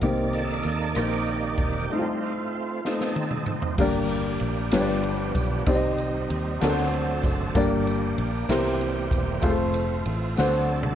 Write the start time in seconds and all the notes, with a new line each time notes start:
0.01 C2 C3 D#3 A#3 C4 D#4 G4 D5, kick, closed hi-hat
0.33 D#4 A4, closed hi-hat
0.63 D#2, closed hi-hat
0.95 A#1 A#3 C4 D#4 G4 A#4, cross-stick, closed hi-hat
1.27 closed hi-hat
1.58 E1, kick, closed hi-hat
1.90 G3 A3 C4 D#4 E4 F4
1.99 F4
2.85 A3 C4 D#4 F4 A4, snare
3.01 snare
3.16 high tom
3.31 mid tom
3.46 mid tom
3.62 floor tom
3.78 G1 G2 A#3 D4 G4 A#4 D5, kick, crash, tambourine
4.09 ride, tambourine
4.40 A#1, ride
4.71 G1 G2 F3 G3 B3 D4 F4 G4 B4 C#5, snare, ride, tambourine
4.81 D5
5.03 ride
5.35 B1, kick, ride, tambourine
5.66 C2 C3 C4 D#4 G4 C5 D5, kick, ride, tambourine
5.75 D#5
5.98 ride, tambourine
6.30 D#2, ride
6.60 D2 D3 C4 D4 F#4 A4 A#4, snare, ride, tambourine
6.64 F#3 A3
6.69 C5
6.93 ride
7.23 F#1, kick, ride, tambourine
7.55 G1 G2 A#3 D4 G4 A#4 D5, kick, ride, tambourine
7.87 ride, tambourine
8.18 A#1, ride
8.48 C2 C3 E3 G3 C4 E4 G4 A#4 C5, snare, ride, tambourine
8.81 ride
9.11 E1, kick, ride, tambourine
9.42 F1 A3 C4 F4 G#4 C5, kick, ride, tambourine
9.50 A4
9.73 ride, tambourine
10.06 A1, ride
10.37 D2 D3 F#3 C4 D4 F#4 A4 C5, snare, tambourine
10.83 mid tom